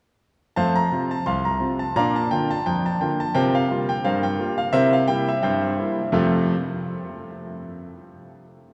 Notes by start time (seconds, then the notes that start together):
0.56 F2 A3 C5 F5 A5
0.76 A#5
0.91 C3 C4 F4
1.11 A5
1.26 C2 F5 A5 C6
1.45 A#5
1.60 C3 C4 F4
1.79 A5
1.96 A#2 D4 D5 F5 A#5
2.16 A5
2.31 D3 A#3 F4 G5
2.51 A5
2.66 F2 G5
2.86 A5
3.01 D3 A#3 F4 G5
3.20 A5
3.35 C3 F4 A#4 C5 G5
3.55 F5
3.70 G3 A#3 F4
3.89 G5
4.04 G2 A#4 C5 F5
4.23 G5
4.39 G3 A#3 F4
4.58 F5
4.73 C3 E4 A#4 C5 E5
4.93 F5
5.08 G3 A#3 E4 G5
5.29 E5
5.43 G2 C5 E5 G5
5.79 G3 A#3 E4
6.12 F2 C3 A3 C4 F4 A4 A5